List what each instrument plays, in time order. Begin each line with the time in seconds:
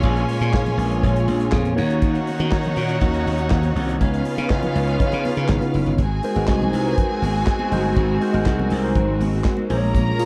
Already playing: tine electric piano A#2 A#3 F4 G#4 C#5, string section G#3 A#3 C#4, violin section F4 C#5 G#5
0.03 slap bass A#1, tine electric piano A#2 A#3 F4 G#4 B4, kick, closed hi-hat, muted conga
0.10 tine electric piano C#5
0.17 closed hi-hat
0.29 open hi-hat
0.41 slap bass A#2, closed hi-hat, high conga
0.52 tine electric piano A#2 A#3 F4 G#4 C#5, kick, snare, clap, muted conga
0.66 closed hi-hat, high conga, low conga
0.78 slap bass A#1, open hi-hat
0.91 closed hi-hat
1.02 slap bass A#1, tine electric piano A#2 A#3 F4 G#4 C#5, kick, closed hi-hat, low conga
1.16 closed hi-hat
1.28 slap bass A#1, open hi-hat, muted conga, high conga
1.40 closed hi-hat
1.51 slap bass F2, tine electric piano A#2 A#3 F4 G#4 C#5, kick, snare, clap
1.65 closed hi-hat, high conga
1.76 slap bass D#2, tine electric piano D#3 A#3 D#4 F#4 C#5, string section D#3 C#4 F#4, violin section D#4 C#5 F#5, open hi-hat, muted conga
1.90 closed hi-hat
2.02 kick, closed hi-hat, muted conga
2.15 closed hi-hat
2.27 open hi-hat, muted conga
2.40 slap bass D#3, closed hi-hat, high conga
2.50 tine electric piano D#3 A#3 D#4 F#4 C#5, kick, snare, clap, muted conga
2.63 closed hi-hat, high conga, low conga
2.76 slap bass A#2, open hi-hat, muted conga
2.89 closed hi-hat
3.00 slap bass D#2, tine electric piano D#3 A#3 D#4 F#4 C#5, kick, closed hi-hat, muted conga, low conga
3.14 closed hi-hat
3.27 slap bass D#2, open hi-hat, high conga
3.38 closed hi-hat
3.50 slap bass D#2, tine electric piano D#3 A#3 D#4 F#4 C5, kick, snare, clap
3.58 tine electric piano C#5
3.63 closed hi-hat, high conga
3.75 slap bass C2, open hi-hat, muted conga
3.89 closed hi-hat
4.00 slap bass C#2, tine electric piano C#3 B3 D#4 F4 C#5, string section C#3 B3 F4, violin section C#4 B4 F5, kick, closed hi-hat, muted conga
4.14 closed hi-hat
4.25 open hi-hat, muted conga
4.38 slap bass C#3, closed hi-hat, high conga
4.50 tine electric piano C#3 B3 D#4 E4 C#5, kick, snare, clap, muted conga
4.57 tine electric piano F4
4.63 closed hi-hat, high conga, low conga
4.76 slap bass C#2, open hi-hat, muted conga
4.87 closed hi-hat
4.99 tine electric piano C#3 B3 D#4 F4 C#5, kick, closed hi-hat, low conga
5.12 slap bass C#3, closed hi-hat
5.25 open hi-hat, muted conga, high conga
5.37 slap bass C#3, closed hi-hat
5.49 slap bass G#1, tine electric piano C#3 B3 D#4 F4 C#5, kick, snare, clap, muted conga
5.61 closed hi-hat, high conga
5.74 slap bass F#1, open hi-hat
5.86 slap bass G1, closed hi-hat
5.98 slap bass G#1, string section G#3 C4 F#4, violin section G#4 G#5, kick, closed hi-hat, muted conga
6.23 tine electric piano G#3 D#4 F#4 A#4 C5, open hi-hat, muted conga
6.36 slap bass G#1, tine electric piano G#3 D#4 F#4 A#4 B4, high conga
6.43 tine electric piano C5
6.48 slap bass C2, kick, snare, clap, closed hi-hat, muted conga
6.62 high conga, low conga
6.73 slap bass C2, open hi-hat, muted conga
6.85 tine electric piano G#3 D#4 F#4 A#4 B4
6.92 tine electric piano C5
6.98 kick, closed hi-hat, low conga
7.22 slap bass G#1, open hi-hat, muted conga, high conga
7.47 kick, snare, clap, closed hi-hat, muted conga
7.59 high conga
7.71 slap bass G1, tine electric piano G#3 D#4 F#4 A#4 C5, open hi-hat, muted conga, low conga
7.85 high conga
7.96 slap bass G#1, kick, closed hi-hat, muted conga
8.20 tine electric piano G#3 D#4 F#4 A#4 C5, open hi-hat, muted conga
8.33 slap bass G#1, tine electric piano G#3 D#4 F#4 A#4 C5, high conga
8.46 slap bass C2, kick, snare, clap, closed hi-hat, muted conga
8.59 high conga, low conga
8.70 slap bass C2, open hi-hat
8.83 tine electric piano G#3 D#4 F#4 A#4 C5
8.95 slap bass G#1, kick, closed hi-hat, low conga
9.20 slap bass G#1, open hi-hat, muted conga, high conga
9.44 kick, snare, clap, closed hi-hat, muted conga
9.57 high conga
9.69 slap bass A#1, tine electric piano A#2 A#3 F4 G#4 C5, string section A#3 C#4, violin section A#4 A#5, open hi-hat, low conga
9.77 tine electric piano C#5
9.84 high conga
9.95 kick, closed hi-hat, tambourine, muted conga
10.19 tine electric piano A#2 A#3 F4 G#4 C#5, open hi-hat, tambourine